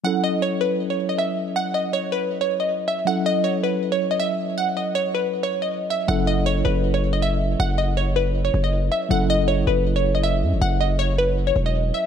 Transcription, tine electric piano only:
\new Staff \with { instrumentName = "Tine electric piano" } { \time 4/4 \key fis \dorian \tempo 4 = 159 <fis cis' e' a'>1~ | <fis cis' e' a'>1 | <fis cis' e' a'>1~ | <fis cis' e' a'>1 |
<fis cis' e' a'>1~ | <fis cis' e' a'>1 | <fis cis' e' a'>1~ | <fis cis' e' a'>1 | }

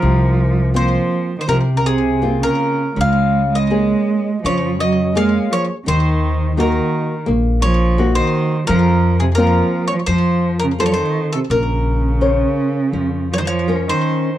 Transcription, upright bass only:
\new Staff \with { instrumentName = "Upright bass" } { \clef bass \time 4/4 \key bes \minor \tempo 4 = 84 c,2 c,2 | des,2 f,2 | ees,2 bes,,2 | f,2 f,2 |
bes,,2 f,2 | }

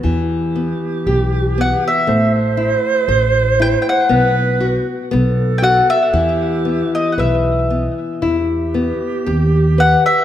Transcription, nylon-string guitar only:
\new Staff \with { instrumentName = "Nylon-string guitar" } { \time 2/4 \key e \minor \tempo 4 = 59 e8 b8 g'8 b8 | a8 e'8 c''8 e'8 | b8 fis'8 b8 fis'8 | e8 b8 b'8 b8 |
e'8 b8 g'8 b'8 | }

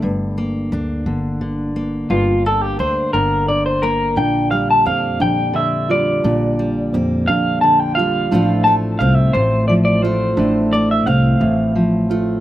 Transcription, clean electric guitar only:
\new Staff \with { instrumentName = "Clean electric guitar" } { \time 6/8 \key g \dorian \tempo 4. = 58 r2. | f'8 a'16 g'16 c''8 bes'8 d''16 c''16 bes'8 | g''8 f''16 a''16 f''8 g''8 e''8 d''8~ | d''4 r8 f''8 a''16 g''16 f''8~ |
f''8 a''8 f''16 e''16 c''8 d''16 d''16 c''8~ | c''8 d''16 e''16 f''4. r8 | }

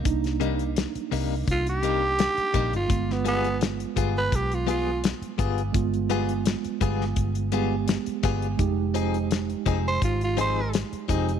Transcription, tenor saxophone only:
\new Staff \with { instrumentName = "Tenor saxophone" } { \time 4/4 \key g \phrygian \tempo 4 = 84 r2 f'16 g'4. f'16~ | f'16 b16 b8 r8. b'16 g'16 f'16 f'8 r4 | r1 | r4. r16 c''16 f'16 f'16 c''8 r4 | }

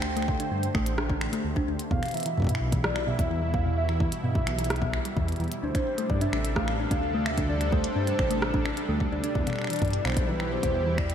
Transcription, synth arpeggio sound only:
\new Staff \with { instrumentName = "Synth arpeggio sound" } { \time 4/4 \key d \dorian \tempo 4 = 129 r16 a16 r16 d'16 d'16 r16 a16 r16 d'16 d'16 r16 a16 r16 d'16 d'16 r16 | b,16 r16 e16 e16 r16 b,16 r16 e16 e16 r16 b,16 r16 e16 e16 r16 b,16 | r16 e16 e16 r16 b,16 r16 e16 e16 r16 b,16 r16 g16 e16 r16 e16 r16 | d'16 d'16 r16 a16 r16 d'16 d'16 r16 a16 r16 d'16 d'16 r16 a16 r16 d'16 |
d'16 r16 a16 r16 d'16 d'16 r16 a16 r16 d'16 d'16 r16 a16 r16 d'16 d'16 | r16 b,16 r16 e16 e16 r16 b,16 r16 e16 e16 r16 b,16 r16 e16 e16 r16 | }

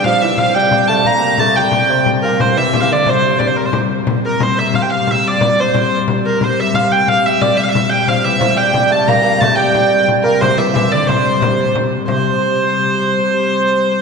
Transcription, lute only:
\new Staff \with { instrumentName = "Lute" } { \clef bass \time 6/8 \key c \mixolydian \tempo 4. = 120 f8 e8 f8 g8 g8 a8 | bes4 a8 g4 c8 | r8 bes,4 e8 e16 e16 d8 | c4 r2 |
r2. | r2. | r2. | r2. |
f8 e8 f8 g8 g8 a8 | bes8 bes16. bes32 a8 g4. | r8 bes,8 c8 e8 e8 d8 | c2 r4 |
c2.~ | c2. | }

